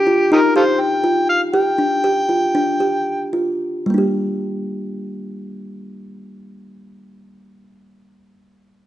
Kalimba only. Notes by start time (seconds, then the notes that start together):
0.07 F4
0.32 D#4
0.56 G4
1.04 F4
1.54 G4
1.78 D4
2.04 G4
2.29 F4
2.55 D4
2.80 G4
3.33 F4
3.86 G3 A#3
3.94 D4 G4